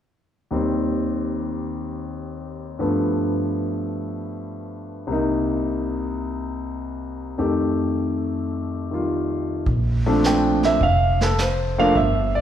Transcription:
0.51 grand piano D#2 D#3 G3 C4
2.79 grand piano G2 F3 A3 B3
5.07 grand piano C2 C3 A#3
5.12 grand piano D#4
7.38 grand piano F2 D#3 A3 G4
8.91 grand piano D#3 G3 F4
9.66 upright bass A#1, brush sweep, kick
10.06 grand piano F3 A3 C4 D4
10.24 grand piano G5, snare, hi-hat pedal
10.63 grand piano E5, snare
10.81 upright bass F1, grand piano F5, brush sweep, kick
11.21 grand piano A4, snare
11.38 grand piano C5, snare, hi-hat pedal
11.78 grand piano F3 A3 A#3 D4 F5
11.96 upright bass G1, grand piano E5, brush sweep, kick
12.35 grand piano D5

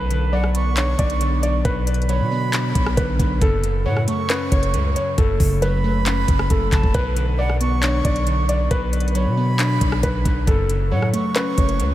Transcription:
Already playing: 808-style bass B1, synth keys B2, grand piano B4
0.10 synth keys D3, closed hi-hat
0.33 synth keys F#3, grand piano D5, flute F#5
0.44 cross-stick
0.55 synth keys B3, flute C#6, closed hi-hat
0.77 synth keys D4, grand piano C#5, clap, closed hi-hat
0.99 808-style bass B1, synth keys B2, grand piano D5, kick, closed hi-hat
1.10 closed hi-hat
1.21 synth keys D3, closed hi-hat
1.43 synth keys F#3, grand piano D5, closed hi-hat
1.65 808-style bass B1, synth keys B2, grand piano B4, kick, closed hi-hat
1.87 synth keys D3, closed hi-hat, open hi-hat
1.94 closed hi-hat
2.02 closed hi-hat
2.09 synth keys F#3, grand piano C#5, flute B5, closed hi-hat
2.20 808-style bass B2
2.31 synth keys B3
2.53 synth keys D4, clap, closed hi-hat
2.75 808-style bass B1, synth keys B2, kick, closed hi-hat
2.86 cross-stick
2.97 808-style bass B1, synth keys D3, grand piano B4, kick, closed hi-hat
3.19 808-style bass B1, synth keys F#3, kick, closed hi-hat
3.41 808-style bass F#1, synth keys F#2, grand piano A4, kick, closed hi-hat
3.64 synth keys C#3, closed hi-hat
3.86 808-style bass A2, synth keys F#3, grand piano C#5, flute F#5
3.97 cross-stick
4.08 synth keys A3, flute C#6, closed hi-hat
4.30 synth keys C#4, grand piano B4, clap, closed hi-hat
4.52 808-style bass F#1, synth keys F#2, grand piano C#5, kick, closed hi-hat
4.63 closed hi-hat
4.74 808-style bass C#2, synth keys C#3, closed hi-hat
4.96 synth keys F#3, grand piano C#5, closed hi-hat
5.18 808-style bass F#1, synth keys F#2, grand piano A4, kick, closed hi-hat
5.40 808-style bass F#1, synth keys C#3, kick, open hi-hat
5.62 synth keys F#3, grand piano B4, flute B5, closed hi-hat
5.84 synth keys A3
6.06 synth keys C#4, clap, closed hi-hat
6.28 808-style bass F#1, synth keys F#2, kick, closed hi-hat
6.39 cross-stick
6.50 808-style bass F#1, synth keys C#3, grand piano A4, kick, closed hi-hat
6.72 808-style bass F#1, synth keys F#3, flute A5, kick, clap, closed hi-hat
6.83 808-style bass F#1, kick
6.94 808-style bass B1, synth keys B2, grand piano B4, kick, closed hi-hat
7.16 synth keys D3, closed hi-hat
7.39 synth keys F#3, grand piano D5, flute F#5
7.49 cross-stick
7.61 synth keys B3, flute C#6, closed hi-hat
7.83 synth keys D4, grand piano C#5, clap, closed hi-hat
8.05 808-style bass B1, synth keys B2, grand piano D5, kick, closed hi-hat
8.16 closed hi-hat
8.27 synth keys D3, closed hi-hat
8.49 synth keys F#3, grand piano D5, closed hi-hat
8.71 808-style bass B1, synth keys B2, grand piano B4, kick, closed hi-hat
8.93 synth keys D3, closed hi-hat, open hi-hat
9.00 closed hi-hat
9.08 closed hi-hat
9.15 synth keys F#3, grand piano C#5, flute B5, closed hi-hat
9.26 808-style bass B2
9.37 synth keys B3
9.59 synth keys D4, clap, closed hi-hat
9.81 808-style bass B1, synth keys B2, kick, closed hi-hat
9.92 cross-stick
10.03 808-style bass B1, synth keys D3, grand piano B4, kick, closed hi-hat
10.25 808-style bass B1, synth keys F#3, kick, closed hi-hat
10.47 808-style bass F#1, synth keys F#2, grand piano A4, kick, closed hi-hat
10.69 synth keys C#3, closed hi-hat
10.92 808-style bass A2, synth keys F#3, grand piano C#5, flute F#5
11.02 cross-stick
11.13 synth keys A3, flute C#6, closed hi-hat
11.36 synth keys C#4, grand piano B4, clap, closed hi-hat
11.57 808-style bass F#1, synth keys F#2, grand piano C#5, kick, closed hi-hat
11.69 closed hi-hat
11.80 808-style bass C#2, synth keys C#3, closed hi-hat

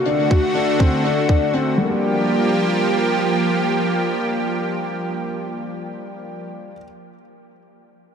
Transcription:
Already playing: analog synth pad D3 A3 F#4
0.05 grand piano D4, closed hi-hat
0.19 closed hi-hat
0.31 grand piano F#4, kick, closed hi-hat
0.55 grand piano D4, closed hi-hat
0.79 grand piano C4, kick, closed hi-hat
1.04 grand piano D4, closed hi-hat
1.17 closed hi-hat
1.29 grand piano D4, kick, closed hi-hat
1.53 grand piano C4, closed hi-hat
1.78 analog synth pad F3 A#3 G4, grand piano G3 A#3
1.86 grand piano D4
1.90 grand piano G4

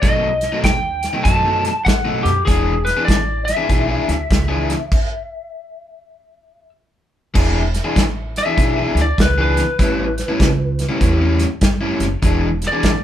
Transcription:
0.02 upright bass B1, overdriven electric guitar B2 F#3 A3 D#4, lead electric guitar D#5, kick, snare, closed hi-hat
0.41 snare, closed hi-hat
0.52 overdriven electric guitar B2 F#3 A3 D#4
0.64 upright bass D#2, lead electric guitar G5, kick, snare, closed hi-hat
1.03 snare, closed hi-hat
1.13 overdriven electric guitar B2 F#3 A3 D#4
1.24 upright bass F#2, overdriven electric guitar B2 F#3 A3 D#4, lead electric guitar A5, kick, snare, closed hi-hat
1.45 overdriven electric guitar B2 F#3 A3 D#4
1.65 snare, closed hi-hat
1.85 upright bass A2, lead electric guitar F#5, kick, snare, closed hi-hat
2.05 overdriven electric guitar B2 F#3 A3 D#4
2.23 upright bass F#2, lead electric guitar G4, snare, closed hi-hat
2.45 upright bass E1, overdriven electric guitar E3 B3 D4 G#4, lead electric guitar G#4, kick, closed hi-hat
2.49 snare
2.85 lead electric guitar B4, snare, closed hi-hat
2.97 overdriven electric guitar E3 B3 D4 G#4
3.05 upright bass A1, lead electric guitar D5, kick
3.09 snare, closed hi-hat
3.45 lead electric guitar E5, closed hi-hat
3.49 snare
3.57 overdriven electric guitar E3 B3 D4 G#4
3.68 upright bass B1, overdriven electric guitar E3 B3 D4 G#4, kick, snare, closed hi-hat
3.88 overdriven electric guitar E3 B3 D4 G#4
4.08 upright bass D2, snare, closed hi-hat
4.30 upright bass C#2, kick, snare, closed hi-hat
4.48 overdriven electric guitar E3 B3 D4 G#4
4.70 snare, closed hi-hat
4.92 kick, crash
7.34 upright bass E1, overdriven electric guitar E3 B3 D4 G#4, kick, snare, crash
7.74 snare, closed hi-hat
7.84 overdriven electric guitar E3 B3 D4 G#4
7.96 upright bass A1, kick, snare, closed hi-hat
8.36 lead electric guitar E5, snare, closed hi-hat
8.46 overdriven electric guitar E3 B3 D4 G#4
8.58 upright bass B1, overdriven electric guitar E3 B3 D4 G#4, kick, snare, closed hi-hat
8.77 overdriven electric guitar E3 B3 D4 G#4
8.95 upright bass D2, snare, closed hi-hat
9.02 lead electric guitar D5
9.18 upright bass C#2, lead electric guitar B4, kick, snare, closed hi-hat
9.38 overdriven electric guitar E3 B3 D4 G#4, lead electric guitar B4
9.57 snare, closed hi-hat
9.79 upright bass A1, overdriven electric guitar A2 G3 C#4 E4, kick, snare, closed hi-hat
10.18 snare, closed hi-hat
10.28 overdriven electric guitar A2 G3 C#4 E4
10.40 upright bass C#2, kick, snare, closed hi-hat
10.79 snare, closed hi-hat
10.89 overdriven electric guitar A2 G3 C#4 E4
11.01 upright bass E2, overdriven electric guitar A2 G3 C#4 E4, kick, snare, closed hi-hat
11.20 overdriven electric guitar A2 G3 C#4 E4
11.39 snare, closed hi-hat
11.61 upright bass G2, kick, snare, closed hi-hat
11.81 overdriven electric guitar A2 G3 C#4 E4
12.00 upright bass F#1, snare, closed hi-hat
12.22 upright bass E1, overdriven electric guitar E3 B3 D4 G#4, kick, snare, closed hi-hat
12.62 snare, closed hi-hat
12.68 lead electric guitar D5
12.72 overdriven electric guitar E3 B3 D4 G#4
12.83 upright bass A1, kick, snare, closed hi-hat

